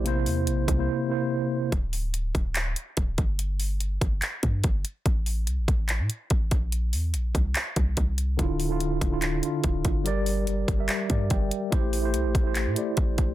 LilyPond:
<<
  \new Staff \with { instrumentName = "Tine electric piano" } { \time 4/4 \key d \minor \tempo 4 = 144 << { r1 | r1 | r1 | r1 |
r1 | r1 | r2. g''4 | r1 | } \\ { <c bes e' c''>4~ <c bes e' c''>16 r8 <c bes e' c''>8 r16 <c bes e' c''>4 r8 | r1 | r1 | r1 |
r1 | <d d' e' f'>8 r16 <d d' e' f'>8. r16 <d d' e' f'>8 r16 <d d' e' f'>4 r8 | <g g' bes' d''>4~ <g g' bes' d''>16 r8 <g g' bes' e''>8 r16 <g g' bes' d''>4 r8 | <a e' g' c''>8 r16 <a e' g' c''>8. r16 <a e' g' c''>8 r16 <a e' g' d''>4 r8 | } >> }
  \new Staff \with { instrumentName = "808-style bass" } { \clef bass \time 4/4 \key d \minor bes,,8 e,8 bes,,8 c,8 r2 | d,,4. d,,4 r8 d,,8 g,,8~ | g,,4. g,,8 r8 g,8 g,,8 r8 | a,,4 c,16 a,,16 a,,8. a,16 r8 a,,8 bes,,8~ |
bes,,8 e,8 bes,,8 c,8 r8 c,8 c,4 | d,,4. d,,4 r8 d,,8 g,,8~ | g,,4. g,,8 r8 g,8 g,,8 r8 | a,,4 c,16 a,,16 a,,8. a,16 r8 a,,8 bes,,8 | }
  \new DrumStaff \with { instrumentName = "Drums" } \drummode { \time 4/4 hh8 hho8 hh8 <hh bd>8 r4 r4 | <hh bd>8 hho8 hh8 <hh bd>8 <hc hh>8 hh8 <hh bd>8 <hh bd>8 | hh8 hho8 hh8 <hh bd>8 <hc hh>8 <hh bd>8 <hh bd>8 hh8 | <hh bd>8 hho8 hh8 <hh bd>8 <hc hh>8 hh8 <hh bd>8 <hh bd>8 |
hh8 hho8 hh8 <hh bd>8 <hc hh>8 <hh bd>8 <hh bd>8 hh8 | <hh bd>8 hho8 hh8 <hh bd>8 <hc hh>8 hh8 <hh bd>8 <hh bd>8 | hh8 hho8 hh8 <hh bd>8 <hc hh>8 <hh bd>8 <hh bd>8 hh8 | <hh bd>8 hho8 hh8 <hh bd>8 <hc hh>8 hh8 <hh bd>8 <hh bd>8 | }
>>